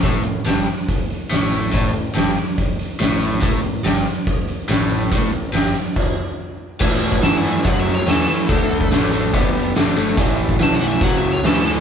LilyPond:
<<
  \new Staff \with { instrumentName = "Lead electric guitar" } { \time 4/4 \key g \lydian \tempo 4 = 142 r1 | r1 | r1 | r1 |
r4 \tuplet 3/2 { a''8 fis''8 e''8 fis''8 e''8 cis''8 } a'4~ | a'4 r2. | r4 \tuplet 3/2 { a''8 fis''8 e''8 fis''8 e''8 cis''8 } a'4 | }
  \new Staff \with { instrumentName = "Tonewheel organ" } { \time 4/4 \key g \lydian r1 | r1 | r1 | r1 |
<a cis' e' a'>1 | \tuplet 3/2 { <bes dis' g' bes'>8 <a d' fis' a'>4~ } <a d' fis' a'>2. | <a cis' e' a'>1 | }
  \new Staff \with { instrumentName = "Overdriven electric guitar" } { \clef bass \time 4/4 \key g \lydian a,8 a,8 g,8 r4. a,4 | a,8 a,8 g,8 r4. a,4 | a,8 a,8 g,8 r4. a,4 | a,8 a,8 g,8 r2 r8 |
<a, e>4 <a, e>8 <a, e>8 <a, fis>4 <a, e>8 <a, e>8 | <d a>4 <d a>8 <d a>8 <d b>4 <d a>8 <d a>8 | <a, e>4 <a, e>8 <a, e>8 <a, fis>4 <a, e>8 <a, e>8 | }
  \new Staff \with { instrumentName = "Picked electric bass" } { \clef bass \time 4/4 \key g \lydian a,,8 a,,8 g,,8 r4. a,,4 | a,,8 a,,8 g,,8 r4. a,,4 | a,,8 a,,8 g,,8 r4. a,,4 | a,,8 a,,8 g,,8 r2 r8 |
a,4 g,4 fis,4 e,8 r8 | d,4 a,,4 fis,,4 g,,4 | a,,4 b,,4 cis,4 d,4 | }
  \new DrumStaff \with { instrumentName = "Drums" } \drummode { \time 4/4 <hh bd>8 hh8 <hh sn>8 hh8 <hh bd>8 hh8 <hh sn>8 hh8 | <hh bd>8 hh8 <hh sn>8 hh8 <hh bd>8 hh8 <hh sn>8 hh8 | <hh bd>8 hh8 <hh sn>8 hh8 <hh bd>8 hh8 <hh sn>8 hh8 | <hh bd>8 hh8 <hh sn>8 hh8 <cymc bd>4 r4 |
<cymc bd>8 hho16 bd16 <hho sn>8 hho8 <hho bd>16 sn16 <hho sn>8 <hho sn>8 hho8 | <hho bd>8 hho16 bd16 <hho sn>8 hho8 <hho bd>8 hho8 <hho sn>8 hho8 | <hho bd>8 hho16 bd16 <hho sn>8 hho8 <hho bd>16 sn16 hho8 <hho sn>8 hho8 | }
>>